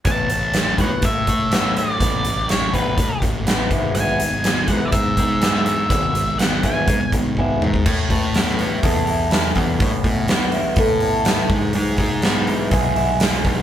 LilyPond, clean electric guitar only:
\new Staff \with { instrumentName = "Clean electric guitar" } { \clef bass \time 4/4 \key e \mixolydian \tempo 4 = 123 <a, e b>8 <a, e>8 <a, e>8 <a, e b>8 <a, e>8 <a, e>8 <a, e b>8 <a, e>8 | <a, e b>8 <a, e>8 <a, e>8 <a, e b>8 <a, e>8 <a, e>8 <a, e b>8 <gis b e'>8 | <gis b e'>8 <gis b>8 <gis b>8 <gis b e'>8 <gis b>8 <gis b>8 <gis b e'>8 <gis b>8 | <gis b e'>8 <gis b>8 <gis b>8 <gis b e'>8 <gis b>8 <gis b>8 <gis b e'>8 <gis b>8 |
a,8 e8 b8 e'8 a'8 e'8 e8 b8 | a,8 e8 b8 e'8 a'8 e'8 e8 gis8 | gis8 gis8 b8 e'8 gis'8 e'8 gis8 b8 | }